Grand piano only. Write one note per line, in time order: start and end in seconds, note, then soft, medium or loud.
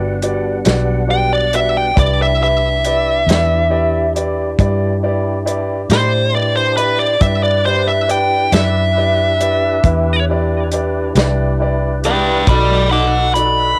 0.00 0.11 F#4 medium
0.00 0.12 G4 medium
0.00 0.12 B4 medium
0.00 0.11 D5 medium
0.22 0.55 F#4 medium
0.22 0.55 G4 medium
0.22 0.55 B4 soft
0.22 0.55 D5 medium
0.64 0.98 F#4 medium
0.64 0.98 G4 medium
0.64 0.98 B4 medium
0.64 0.98 D5 medium
1.07 1.41 F#4 soft
1.07 1.41 G4 soft
1.07 1.42 B4 soft
1.07 1.42 D5 medium
1.54 1.86 F#4 soft
1.54 1.86 G4 soft
1.54 1.86 B4 soft
1.54 1.86 D5 medium
1.96 2.29 E4 medium
1.96 2.29 G4 medium
1.96 2.29 B4 medium
1.96 2.29 D5 medium
2.41 2.73 E4 soft
2.41 2.73 G4 soft
2.41 2.74 B4 soft
2.41 2.74 E5 medium
2.84 3.17 E4 medium
2.84 3.17 G4 soft
2.84 3.18 B4 medium
2.84 3.17 D5 medium
3.29 3.61 E4 medium
3.29 3.61 G4 soft
3.29 3.61 B4 soft
3.29 3.61 D5 medium
3.70 4.04 E4 medium
3.70 4.03 G4 medium
3.70 4.04 B4 medium
3.70 4.04 D5 medium
4.15 4.48 E4 medium
4.15 4.48 G4 medium
4.15 4.48 B4 medium
4.15 4.48 D5 medium
4.59 4.92 E4 medium
4.59 4.92 G4 medium
4.59 4.92 B4 medium
4.59 4.92 D5 medium
5.03 5.36 E4 medium
5.03 5.36 G4 medium
5.03 5.36 B4 medium
5.03 5.36 D5 medium
5.45 5.79 E4 medium
5.45 5.79 G4 medium
5.45 5.79 B4 medium
5.45 5.79 D5 medium
5.90 6.23 E4 soft
5.90 6.23 G4 soft
5.90 6.23 D5 medium
5.90 6.24 B5 soft
6.33 6.66 E4 soft
6.33 6.66 G4 soft
6.33 6.67 B4 soft
6.33 6.67 D5 medium
6.77 7.10 E4 medium
6.77 7.10 G4 soft
6.77 7.11 B4 soft
6.77 7.10 D5 medium
7.20 7.54 E4 medium
7.20 7.54 G4 medium
7.20 7.54 B4 medium
7.20 7.54 D5 medium
7.65 7.98 E4 soft
7.65 7.98 G4 soft
7.65 7.98 B4 soft
7.65 7.98 D5 medium
8.08 8.41 E4 medium
8.08 8.41 G4 medium
8.08 8.41 B4 medium
8.08 8.42 D5 medium
8.52 8.85 E4 soft
8.52 8.85 G4 soft
8.52 8.86 B4 soft
8.52 8.86 D5 medium
8.96 9.29 E4 medium
8.96 9.29 G4 soft
8.96 9.29 B4 soft
8.96 9.30 D5 medium
9.40 9.73 E4 medium
9.40 9.73 G4 soft
9.40 9.74 B4 soft
9.40 9.73 D5 medium
9.84 10.17 E4 medium
9.84 10.17 G4 medium
9.84 10.17 B4 medium
9.84 10.18 E5 medium
10.29 10.61 E4 medium
10.29 10.62 G4 medium
10.29 10.62 B4 medium
10.29 10.62 D5 medium
10.72 11.05 E4 medium
10.72 11.05 G4 medium
10.72 11.05 B4 medium
10.72 11.05 D5 medium
11.17 11.49 E4 medium
11.17 11.50 G4 medium
11.17 11.50 B4 medium
11.17 11.50 D5 medium
11.60 11.92 E4 medium
11.60 11.93 G4 medium
11.60 11.93 B4 medium
11.60 11.93 D5 medium
12.05 12.37 E4 medium
12.05 12.37 G4 soft
12.05 12.37 B4 soft
12.05 12.37 D5 medium
12.49 12.81 D#4 medium
12.49 12.81 F#4 medium
12.49 12.81 A4 medium
12.49 12.81 D5 medium
12.91 13.24 D#4 medium
12.91 13.24 F#4 soft
12.91 13.24 A4 soft
12.91 13.24 D#5 medium
13.35 13.67 D#4 medium
13.35 13.68 F#4 medium
13.35 13.68 A4 medium
13.35 13.68 D5 medium